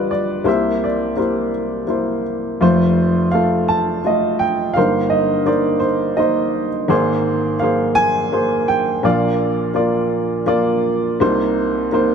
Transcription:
Already playing: G1 G2 G3 F4 B4 D5 D#5 F5
0.11 D5
0.44 C2 C3 A#3 E4 G4 A#4 C5 E5
0.84 D5
1.17 A#3 E4 G4 C5
1.87 A#3 E4 C5
2.61 F1 F2 A3 F4 C5
3.31 A3 F4 A4 F5
3.68 A5
4.04 A3 F4 D#5
4.39 G5
4.74 G1 G2 A#3 D#4 C5 F5
4.78 A#4
5.10 D#5
5.46 A#3 D#4 C5 D5
5.80 C5
6.17 A#3 D#4 C5 D#5
6.88 G#1 G#2 A#3 G#4 C5
7.60 A#3 G#4 C5 F5
7.95 G#5
8.32 A#3 G#4 C5
8.68 G5
9.03 A#1 A#2 A#3 F4 D5 F5
9.74 A#3 F4 D5
10.46 A#3 F4 D5
11.20 C2 C3 A#3 D#4 C5
11.92 A#3 D#4 C5

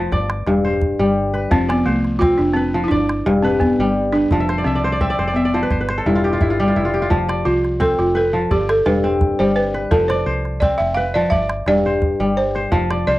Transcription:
Already playing: F3 A3 B4
0.12 G1 D5, calabash thump, calabash click
0.30 calabash click
0.46 E1 G2, calabash click
0.65 C5
0.81 calabash thump
0.99 G1 G3
1.34 B4, calabash click
1.51 F1 F3 C4, calabash thump, calabash click
1.68 B3 D5, calabash click
1.85 C2 A3 C5
2.05 calabash click
2.19 C4 F4, calabash thump, calabash click
2.38 F1 D4, calabash click
2.53 C4 B4
2.74 F3
2.84 E4
2.88 G1 D4 D5, calabash thump, calabash click
3.09 calabash click
3.26 E1 G2, calabash click
3.42 C4 B4
3.60 B3, calabash thump
3.79 G1 G3
4.13 D4 B4
4.31 F1 F3, calabash thump
4.40 E5
4.49 C5, calabash click
4.58 D5
4.64 C2 C4 E5
4.75 D5
4.84 C5
4.92 D5
5.01 C4 E5, calabash thump
5.10 D5
5.19 F1 C5, calabash click
5.28 D5
5.34 B3 E5
5.45 D5
5.54 F3 C5
5.63 B4
5.70 G1 C5, calabash thump, calabash click
5.81 B4
5.89 C5, calabash click
5.98 A4
6.06 E1 G2 E4
6.15 F4
6.24 G4
6.33 F4
6.41 G1 E4, calabash thump
6.50 F4
6.60 G3 G4
6.68 F4
6.76 F1 E4
6.85 F4
6.94 G4, calabash click
7.02 F4
7.10 F1 F3, calabash thump, calabash click
7.29 D5, calabash click
7.45 C2 F4 C5
7.65 calabash click
7.80 C4 A4, calabash thump, calabash click
7.99 F1 F4, calabash click
8.15 A4 B4
8.33 F3
8.51 G1 G4 D5, calabash thump, calabash click
8.69 A4, calabash click
8.86 E1 G2 B4, calabash click
9.04 C4
9.21 calabash thump
9.39 G1 G3 C5
9.56 B4
9.74 B4, calabash click
9.91 F1 F3 A4, calabash thump, calabash click
10.08 C5 D5, calabash click
10.26 C2 C5
10.45 calabash click
10.60 C4 D5, calabash thump, calabash click
10.78 F1 E5, calabash click
10.94 B4 F5
11.14 F3 D5
11.30 G1 D5 E5, calabash thump, calabash click
11.49 calabash click
11.66 E1 G2 D5, calabash click
11.86 C5
12.02 calabash thump
12.20 G1 G3
12.37 C5
12.55 C5, calabash click
12.72 F1 F3, calabash thump, calabash click
12.90 D5, calabash click
13.07 C2 C5 D5

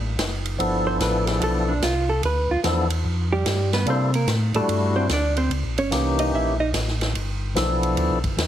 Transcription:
Already playing: A1
0.17 F#1, snare, hi-hat pedal, ride
0.45 ride
0.58 G1 F3 B3 D4 E4 A4, ride
0.87 C5
1.00 A1 B4, snare, hi-hat pedal, ride
1.27 G#4, snare, ride
1.41 B1 A4, ride
1.68 D4
1.82 C2 F4, snare, hi-hat pedal, ride
2.09 A4
2.23 D2 B4, ride
2.49 D2 F4
2.63 E2 F3 B3 D4 E4 A4, snare, hi-hat pedal, ride
2.90 ride
3.04 F2
3.32 G3 G4
3.45 G2, snare, hi-hat pedal, ride
3.73 B3 B4, snare, ride
3.86 C3 G3 A#3 D4 E4 A4, ride
3.90 C4 C5
4.14 A#3 A#4, ride
4.27 A2, snare, hi-hat pedal, ride
4.54 A2 G3 A3 D4 E4 F#4 A4, ride
4.68 G2, ride
4.96 C4 C5
5.09 D2 D5, snare, hi-hat pedal, ride
5.13 D4
5.37 C4 C5, ride
5.50 C#2, ride
5.63 A#1
5.78 G1 C#4 C#5, ride
5.91 C2 E3 A#3 C#4 D#4 G4, snare, hi-hat pedal, ride
6.19 D#4 D#5, ride
6.32 A#1 E4 E5
6.60 D#4 D#5
6.73 A1, snare, hi-hat pedal, ride
6.88 snare
7.01 snare, ride
7.14 G1, ride
7.55 B1 F3 B3 D4 E4 A4, snare, hi-hat pedal, ride
7.83 ride
7.96 D2, ride
8.10 B1
8.24 G1, kick, ride
8.37 E2, snare, hi-hat pedal, ride

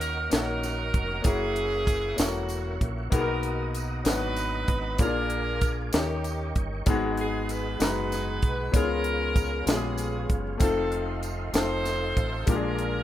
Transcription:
Already playing: D#2 D#3 A#3 C#4 D#4 F#4 A#4 D#5 F#5 C#6
0.00 A#4, closed hi-hat, tambourine
0.30 A#1 A#3 C#4 D#4 F#4 A#4 C#5, snare, closed hi-hat, tambourine
0.63 snare, closed hi-hat, tambourine
0.94 F1, kick, closed hi-hat
1.22 F#1 A#3 C#4 E4 F#4 G#4 E5, kick, closed hi-hat, tambourine
1.26 A#4
1.56 closed hi-hat
1.87 kick, closed hi-hat, tambourine
2.16 E1 A#3 C#4 E4 F#4, snare, closed hi-hat, tambourine
2.20 A4
2.26 A#4
2.49 closed hi-hat, tambourine
2.81 A#1, kick, closed hi-hat
3.10 B1 B2 A#3 B3 D#4 F#4 G#4 A#4 D#5 A#5 D#6, kick, closed hi-hat, tambourine
3.21 A#4
3.43 closed hi-hat
3.75 closed hi-hat, tambourine
4.04 G#1 F#3 B3 D4 D#4 F#4 B4, snare, closed hi-hat, tambourine
4.12 D#4
4.36 closed hi-hat, tambourine
4.68 G#1, kick, closed hi-hat
4.98 A#1 A#2 A#3 C#4 D4 F4 G#4 A#4 F5 G#5 D6, kick, closed hi-hat, tambourine
5.05 D4
5.30 closed hi-hat
5.61 kick, closed hi-hat, tambourine
5.92 D#2 D#3 A#3 C#4 D#4 G4 A#4 D#5 G5 C#6, snare, closed hi-hat, tambourine
5.97 A4
6.03 A#4
6.24 closed hi-hat, tambourine
6.56 G1, kick, closed hi-hat
6.86 G#1 G#2 G#3 B3 D#4 F#4 G#4 F#5, kick, closed hi-hat, tambourine
7.17 G#4, closed hi-hat
7.49 B4, closed hi-hat, tambourine
7.80 F#1 G#3 B3 D#4 F#4 B4 A#5, snare, closed hi-hat, tambourine
8.12 snare, closed hi-hat, tambourine
8.42 B1, kick, closed hi-hat
8.72 C#2 C#3 G#3 B3 C#4 D#4 F4 A#4 C#5 F5, kick, closed hi-hat, tambourine
8.76 G#4
8.82 F4
9.04 closed hi-hat
9.36 kick, closed hi-hat, tambourine
9.66 A#1 G#3 B3 C#4 F4 G4 G#4, snare, closed hi-hat, tambourine
9.76 G#4
9.98 closed hi-hat, tambourine
10.30 F#1, kick, closed hi-hat
10.58 F1 A3 C4 D#4 F4 A4 D#5 C6, kick, closed hi-hat, tambourine
10.62 C4 D#4 A4
10.92 closed hi-hat
11.23 closed hi-hat, tambourine
11.53 F1 A3 C4 D#4 F4 A4 C5, snare, closed hi-hat, tambourine
11.85 snare, closed hi-hat, tambourine
12.17 A1, kick, closed hi-hat
12.46 A#1 A#2 G#3 A#3 D4 F4 G4 G#4 A#4 D5 A#5, kick, closed hi-hat, tambourine
12.56 G#4
12.79 closed hi-hat

